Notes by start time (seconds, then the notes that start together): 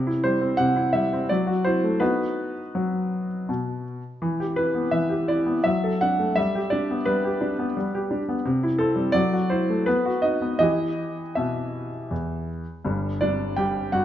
Already playing: C3
0.07 E4
0.24 G3 C5
0.41 C4
0.57 C3 F#5
0.76 E4
0.93 G3 E5
1.13 C4
1.29 F#3 D5
1.47 F#4
1.65 E4 C5
1.84 A3
2.00 B3 D#4 F#4 B4
2.75 F#3
3.49 B2
4.22 E3
4.40 G4
4.56 E4 B4
4.75 B3
4.91 E3 E5
5.09 G4
5.28 E4 D5
5.46 B3
5.64 F#3 E5
5.84 A4
6.01 D4 F#5
6.19 A3
6.36 G3 E5
6.55 G4
6.70 D4 D5
6.91 B3
7.05 G3 B4
7.24 G4
7.41 D4
7.59 B3
7.77 G3
7.95 G4
8.11 D4
8.29 B3
8.45 C3
8.63 E4
8.79 C4 A4
8.96 G3
9.12 F#3 D5
9.33 F#4
9.50 E4 C5
9.70 A3
9.86 B3 B4
10.05 F#4
10.22 D#4 D#5
10.41 B3
10.59 E3 E4 G4 D#5
11.35 B2 E5
12.11 E2
12.85 G1 G2
13.21 G2 D4 D5
13.56 G2 G4 G5
13.92 G2 F#4 F#5